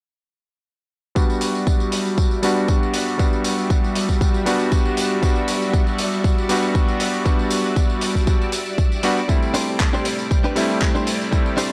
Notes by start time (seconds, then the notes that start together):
1.15 G3 B3 D4 F#4 D5 E5, kick, tambourine
1.30 tambourine
1.41 open hi-hat, tambourine
1.55 tambourine
1.67 kick, tambourine
1.80 tambourine
1.92 open hi-hat, tambourine
2.05 tambourine
2.18 kick, tambourine
2.31 tambourine
2.42 G3 B3 D4 F#4, open hi-hat, tambourine
2.57 tambourine
2.68 kick, tambourine
2.83 tambourine
2.94 open hi-hat, tambourine
3.08 tambourine
3.18 G3 B3 D4 F#4, kick, tambourine
3.33 tambourine
3.44 open hi-hat, tambourine
3.59 tambourine
3.70 kick, tambourine
3.84 tambourine
3.95 open hi-hat, tambourine
4.09 kick, tambourine
4.21 kick, tambourine
4.34 tambourine
4.46 G3 B3 D4 F#4, open hi-hat, tambourine
4.59 tambourine
4.72 kick, tambourine
4.85 tambourine
4.97 open hi-hat, tambourine
5.11 tambourine
5.22 G3 B3 D4 F#4, kick, tambourine
5.36 tambourine
5.48 open hi-hat, tambourine
5.62 tambourine
5.73 kick, tambourine
5.87 tambourine
5.98 open hi-hat, tambourine
6.12 tambourine
6.24 kick, tambourine
6.38 tambourine
6.49 G3 B3 D4 F#4, open hi-hat, tambourine
6.62 tambourine
6.75 kick, tambourine
6.88 tambourine
7.00 open hi-hat, tambourine
7.14 tambourine
7.25 G3 B3 D4 F#4, kick, tambourine
7.39 tambourine
7.50 open hi-hat, tambourine
7.64 tambourine
7.76 kick, tambourine
7.90 tambourine
8.01 open hi-hat, tambourine
8.15 kick, tambourine
8.27 kick, tambourine
8.42 tambourine
8.52 open hi-hat, tambourine
8.66 tambourine
8.78 kick, tambourine
8.92 tambourine
9.03 G3 B3 D4 F#4, open hi-hat, tambourine
9.17 tambourine
9.28 G3 A3 C4 E4 G4, kick, tambourine
9.43 tambourine
9.54 D4 G4 C5, open hi-hat, tambourine
9.67 tambourine
9.80 muted clean electric guitar stroke, kick, clap, tambourine
9.93 D4 G4 C5, tambourine
10.05 open hi-hat, tambourine
10.19 muted clean electric guitar stroke, tambourine
10.31 kick, tambourine
10.44 D4 G4 B4, tambourine
10.55 G3 A3 C4 E4, open hi-hat, tambourine
10.70 tambourine
10.82 kick, clap, tambourine
10.95 D4 G4 C5, tambourine
11.07 open hi-hat, tambourine
11.20 muted clean electric guitar stroke, tambourine
11.31 G3 A3 C4 E4, kick, tambourine
11.46 tambourine
11.57 D4 G4 C5, open hi-hat, tambourine